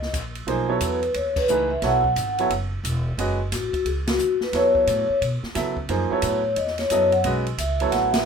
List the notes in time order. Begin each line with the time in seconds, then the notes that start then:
Already playing: C#2
0.02 snare
0.13 A#1, kick, hi-hat pedal, crash, ride
0.35 ride
0.47 B1 F3 A#3 D#4 G#4 C5, ride
0.69 F#3 B3 E4 A4 C#5
0.81 E2 B4, hi-hat pedal, ride
1.03 ride
1.14 D#2 C#5, ride
1.36 B4, kick, crash
1.48 C#2 E3 A3 D#4 G#4 B4, hi-hat pedal
1.70 E5
1.82 B1 F#3 B3 E4 A4 C#5 F#5, snare, ride
2.04 kick
2.16 G#1, hi-hat pedal, ride
2.38 F#3 B3 E4 A4 C#5, ride
2.50 F#1, ride
2.84 E1, hi-hat pedal, ride
3.17 F#1 G#3 C#4 F#4 B4 D#5, ride
3.52 A1 F#4, snare, hi-hat pedal, ride
3.73 muted upright bass stroke, kick, ride
3.85 C#2 G#4, ride
4.07 F#4, snare, ride
4.19 D#2, hi-hat pedal
4.40 B4, muted upright bass stroke, snare
4.53 E2 F#3 B3 E4 A4 C#5, snare, ride
4.75 kick
4.87 A2, hi-hat pedal, ride
5.10 muted upright bass stroke
5.21 B2, ride
5.43 muted upright bass stroke, snare
5.55 C#3 F#3 B3 E4 A4 E5, snare, hi-hat pedal, ride
5.77 kick
5.89 F#2 F3 A#3 D#4 G#4 C5, ride
6.10 F#3 B3 E4 A4 C#5, muted upright bass stroke
6.22 A2, hi-hat pedal, ride
6.26 C#5
6.56 E2 D#5, ride
6.67 snare
6.78 C#5, snare, ride
6.90 F#2 F#3 B3 E4 A4 D#5, hi-hat pedal, ride
7.12 F#5, ride
7.24 B1 G#3 C#4 F#4 B4 D#5, ride
7.46 ride
7.58 C#2 E5, hi-hat pedal, ride
7.80 F#3 B3 E4 A4 C#5, ride
7.90 A1 F#5, snare, ride
8.11 E5, snare, ride